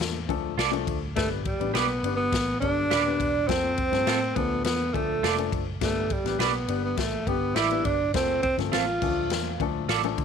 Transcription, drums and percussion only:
0.00 snare, ride
0.29 kick, ride
0.59 snare, ride
0.73 ride
0.87 kick, ride
1.16 kick, snare, ride
1.45 kick, ride
1.61 ride
1.75 snare, ride
2.04 ride
2.32 kick, snare, ride
2.62 kick, ride
2.91 snare, ride
3.20 kick, ride
3.49 kick, snare, ride
3.78 kick, ride
3.93 snare, ride
4.07 snare, ride
4.36 kick, ride
4.65 snare, ride
4.94 kick, ride
5.24 snare, ride
5.38 ride
5.52 kick, ride
5.81 kick, snare, ride
6.10 kick, ride
6.26 snare, ride
6.40 snare, ride
6.68 ride
6.97 kick, snare, ride
7.27 kick, ride
7.56 snare, ride
7.71 ride
7.85 kick, ride
8.14 kick, snare, ride
8.43 kick, ride
8.58 snare, ride
8.73 snare, ride
9.02 kick, crash
9.30 snare, ride
9.60 kick, ride
9.89 snare, ride
10.04 ride
10.18 kick, ride

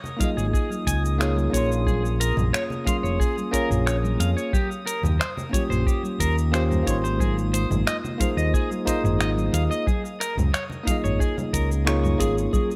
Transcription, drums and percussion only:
0.04 low conga, shaker
0.20 kick, closed hi-hat, high conga, shaker
0.39 shaker
0.53 kick, shaker
0.70 high conga, shaker
0.87 kick, closed hi-hat, shaker
1.05 shaker
1.21 finger snap, shaker
1.36 high conga, shaker
1.53 kick, closed hi-hat, shaker
1.72 shaker
1.87 kick, high conga, shaker
2.05 shaker
2.21 closed hi-hat, shaker
2.37 mid tom, high conga, low conga, shaker
2.54 finger snap, shaker
2.70 low conga, shaker
2.86 kick, closed hi-hat, high conga, shaker
3.05 shaker
3.20 kick, shaker
3.38 high conga, shaker
3.53 kick, closed hi-hat, shaker
3.71 mid tom, shaker
3.87 finger snap, shaker
4.04 high conga, shaker
4.20 closed hi-hat, shaker
4.38 shaker
4.53 kick, high conga, shaker
4.72 shaker
4.87 closed hi-hat, shaker
5.03 mid tom, high conga, low conga, shaker
5.21 finger snap, shaker
5.37 low conga, shaker
5.53 kick, closed hi-hat, high conga, shaker
5.71 mid tom, shaker
5.86 kick, shaker
6.03 high conga, shaker
6.20 kick, closed hi-hat, shaker
6.38 shaker
6.54 finger snap, shaker
6.71 mid tom, high conga, shaker
6.87 kick, closed hi-hat, shaker
7.05 shaker
7.20 kick, high conga, shaker
7.38 shaker
7.54 closed hi-hat, shaker
7.71 mid tom, high conga, low conga, shaker
7.87 finger snap, shaker
8.04 low conga, shaker
8.20 kick, closed hi-hat, high conga, shaker
8.38 shaker
8.54 kick, shaker
8.71 high conga, shaker
8.87 kick, closed hi-hat, shaker
9.05 mid tom, shaker
9.21 finger snap, shaker
9.37 high conga, shaker
9.54 closed hi-hat, shaker
9.72 shaker
9.87 kick, high conga, shaker
10.05 shaker
10.21 finger snap, closed hi-hat, shaker
10.38 mid tom, high conga, low conga, shaker
10.54 finger snap, shaker
10.70 low conga, shaker
10.87 kick, closed hi-hat, high conga, shaker
11.04 mid tom, shaker
11.20 kick, shaker
11.37 high conga, low conga, shaker
11.53 kick, closed hi-hat, shaker
11.72 shaker
11.87 finger snap, shaker
12.04 mid tom, high conga, shaker
12.20 kick, closed hi-hat, shaker
12.38 shaker
12.53 kick, high conga, shaker
12.71 shaker

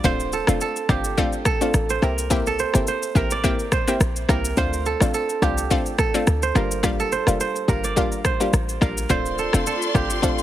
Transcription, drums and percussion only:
0.04 kick, shaker
0.20 shaker
0.33 shaker
0.47 cross-stick, shaker
0.61 shaker
0.76 shaker
0.89 kick, cross-stick, shaker
1.04 shaker
1.18 kick, shaker
1.33 shaker
1.45 kick, cross-stick, shaker
1.61 shaker
1.74 cross-stick, shaker
1.90 shaker
2.03 cross-stick, shaker
2.18 shaker
2.31 kick, shaker
2.47 shaker
2.59 shaker
2.74 cross-stick, shaker
2.87 shaker
3.03 shaker
3.15 kick, shaker
3.31 shaker
3.44 kick, shaker
3.59 shaker
3.72 kick, cross-stick, shaker
3.88 shaker
4.01 cross-stick, shaker
4.16 shaker
4.29 kick, cross-stick, shaker
4.45 shaker
4.57 kick, shaker
4.73 shaker
4.86 shaker
5.00 cross-stick, shaker
5.14 shaker
5.30 shaker
5.42 kick, cross-stick, shaker
5.58 shaker
5.71 kick, shaker
5.86 shaker
5.99 kick, cross-stick, shaker
6.15 shaker
6.27 cross-stick, shaker
6.43 shaker
6.56 cross-stick, shaker
6.71 shaker
6.84 kick, cross-stick, shaker
7.00 shaker
7.12 shaker
7.27 cross-stick, shaker
7.40 shaker
7.56 shaker
7.68 kick, shaker
7.84 shaker
7.97 kick, shaker
8.12 shaker
8.25 kick, cross-stick, shaker
8.41 shaker
8.53 cross-stick, shaker
8.69 shaker
8.82 kick, cross-stick, shaker
8.98 shaker
9.10 kick, shaker
9.26 shaker
9.38 shaker
9.53 cross-stick, shaker
9.67 shaker
9.82 shaker
9.95 kick, cross-stick, shaker
10.10 shaker
10.23 kick, shaker
10.38 shaker

